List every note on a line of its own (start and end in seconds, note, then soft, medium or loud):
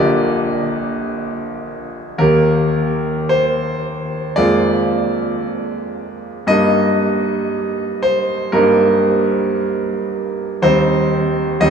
0.00 2.15 A#1 medium
0.00 2.15 D3 medium
0.00 2.16 A#3 medium
0.00 2.16 G4 medium
0.00 2.19 D5 medium
0.00 2.23 D#5 medium
2.18 4.33 D#2 medium
2.18 4.33 D#3 medium
2.18 4.34 A#3 medium
2.18 4.34 G4 medium
2.18 3.30 A#4 medium
3.29 4.37 C5 medium
4.36 6.44 F2 medium
4.36 6.45 G#3 medium
4.36 6.45 A#3 soft
4.36 6.45 F4 medium
4.36 6.48 D5 medium
6.47 8.50 G2 medium
6.47 8.51 G3 medium
6.47 8.51 A#3 medium
6.47 8.52 D#4 medium
6.47 8.04 D#5 loud
8.03 8.54 C5 medium
8.52 10.58 G2 medium
8.52 10.58 G3 medium
8.52 10.58 A#3 medium
8.52 10.59 D#4 medium
8.52 10.61 A#4 medium
10.62 11.59 D#2 medium
10.62 11.59 G3 medium
10.62 11.60 C4 medium
10.62 11.60 D#4 medium
10.62 11.62 C5 medium
11.60 11.70 D#2 medium
11.60 11.70 G3 medium
11.60 11.70 C4 medium
11.60 11.70 D#4 medium
11.60 11.70 D#5 medium